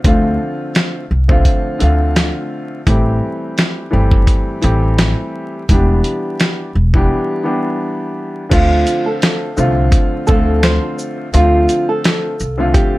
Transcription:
0.04 0.36 D2 loud
0.04 1.02 D3 medium
0.04 1.02 F3 medium
0.04 1.03 A3 medium
0.04 1.03 C4 medium
0.04 1.03 F4 loud
0.04 kick loud
0.04 closed hi-hat medium
0.75 snare loud
0.75 closed hi-hat medium
1.11 1.42 C2 medium
1.28 1.76 D3 medium
1.28 1.77 F3 medium
1.28 1.77 A3 medium
1.28 1.77 C4 medium
1.28 1.78 F4 loud
1.28 kick medium
1.45 kick loud
1.45 closed hi-hat medium
1.79 2.30 D2 medium
1.79 2.78 D3 loud
1.79 2.78 F3 medium
1.79 2.79 A3 medium
1.79 2.79 C4 medium
1.79 2.79 F4 loud
1.79 closed hi-hat medium
2.16 snare loud
2.16 closed hi-hat medium
2.87 3.18 A1 loud
2.87 3.85 E3 medium
2.87 3.85 G3 medium
2.87 3.85 A3 medium
2.87 3.86 C4 medium
2.87 3.86 G4 loud
2.87 kick loud
2.87 closed hi-hat medium
3.58 snare loud
3.58 closed hi-hat medium
3.90 4.24 G1 medium
3.90 4.57 E3 medium
3.90 4.57 G3 medium
3.90 4.58 A3 medium
3.90 4.58 C4 medium
3.90 4.58 G4 loud
4.12 kick medium
4.27 kick loud
4.27 closed hi-hat medium
4.61 5.12 A1 loud
4.61 5.60 E3 loud
4.61 5.61 G3 medium
4.61 5.61 A3 medium
4.61 5.61 C4 medium
4.61 5.62 G4 loud
4.61 closed hi-hat medium
4.98 snare loud
4.98 closed hi-hat medium
5.69 6.01 E1 loud
5.69 6.68 E3 medium
5.69 6.68 G3 medium
5.69 6.68 B3 medium
5.69 6.69 D4 medium
5.69 6.69 G4 loud
5.69 kick loud
5.69 closed hi-hat medium
6.04 closed hi-hat soft
6.40 snare loud
6.40 closed hi-hat medium
6.75 7.07 E1 medium
6.94 7.42 E3 medium
6.94 7.42 G3 medium
6.94 7.43 B3 medium
6.94 7.43 D4 medium
6.94 7.43 G4 loud
6.94 kick medium
7.43 8.43 E3 medium
7.43 8.43 G3 medium
7.43 8.43 B3 medium
7.43 8.43 D4 medium
7.43 8.44 G4 loud
8.49 8.83 D2 loud
8.49 9.48 D3 medium
8.49 9.49 F3 medium
8.49 9.49 A3 medium
8.49 9.49 C4 medium
8.49 9.50 F4 loud
8.49 9.03 F4 loud
8.49 kick loud
8.49 closed hi-hat medium
8.49 crash loud
8.87 closed hi-hat medium
8.87 shaker medium
9.06 10.24 A4 medium
9.22 snare loud
9.22 closed hi-hat medium
9.57 9.89 C2 loud
9.57 10.22 D3 loud
9.57 10.23 F3 medium
9.57 10.23 A3 medium
9.57 10.23 C4 medium
9.57 10.24 F4 loud
9.57 shaker medium
9.92 kick loud
9.92 closed hi-hat medium
10.27 10.77 D2 medium
10.27 11.26 D3 loud
10.27 11.26 F3 medium
10.27 11.26 A3 medium
10.27 11.27 C4 medium
10.27 11.27 F4 loud
10.27 10.59 A4 medium
10.27 kick loud
10.27 shaker medium
10.63 10.95 C5 medium
10.63 snare loud
10.63 closed hi-hat medium
10.99 shaker medium
11.33 11.65 D2 loud
11.33 12.32 D3 medium
11.33 12.32 F3 medium
11.33 12.32 A3 medium
11.33 12.33 C4 medium
11.33 11.85 F4 loud
11.33 12.33 F4 loud
11.33 closed hi-hat medium
11.69 closed hi-hat medium
11.69 shaker medium
11.89 12.71 A4 medium
12.04 snare loud
12.04 closed hi-hat medium
12.40 12.72 C2 medium
12.40 shaker medium
12.57 12.98 D3 medium
12.57 12.98 F3 medium
12.57 12.98 A3 medium
12.57 12.98 C4 medium
12.57 12.98 F4 loud
12.74 12.98 G4 medium
12.74 kick loud
12.74 closed hi-hat medium

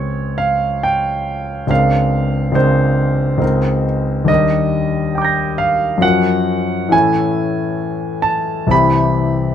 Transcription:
0.00 1.63 C#2 soft
0.00 1.65 G#3 soft
0.00 1.65 C4 soft
0.00 1.65 F4 soft
0.00 1.66 G#4 soft
0.00 0.37 C#5 medium
0.38 0.83 F5 medium
0.83 1.70 G5 medium
1.67 2.51 C#2 soft
1.67 2.52 G#3 soft
1.67 2.52 C4 soft
1.67 2.53 D4 soft
1.67 2.54 A#4 soft
1.67 2.56 F5 medium
2.52 3.37 C#2 soft
2.52 3.37 G#3 soft
2.52 3.39 C4 soft
2.52 3.39 D4 soft
2.52 3.85 C5 medium
2.56 3.40 A#4 soft
3.38 4.24 C#2 soft
3.38 4.24 G#3 soft
3.38 4.25 C4 soft
3.38 4.25 D#4 soft
3.38 4.26 A#4 soft
4.24 5.97 D#2 soft
4.24 5.97 G3 soft
4.24 5.98 D4 soft
4.24 5.98 G4 soft
4.24 5.58 D#5 medium
4.29 5.99 A#4 soft
5.15 5.99 G5 soft
5.15 6.00 D6 soft
5.22 6.02 G6 soft
5.22 6.03 A#6 soft
5.58 6.02 F5 medium
5.98 6.87 F#2 soft
5.98 6.89 F3 soft
5.98 6.89 C#4 soft
5.98 6.89 F#4 soft
6.02 6.90 A#4 soft
6.02 6.92 F#5 medium
6.89 8.65 A2 soft
6.89 8.66 E3 soft
6.89 8.67 C#4 soft
6.89 8.67 E4 soft
6.89 8.67 A4 soft
6.89 8.26 G#5 medium
8.22 8.69 A5 medium
8.67 9.55 C2 soft
8.67 9.55 E3 soft
8.67 9.55 C4 soft
8.67 9.55 E4 soft
8.71 9.55 G4 soft
8.71 9.55 B5 medium

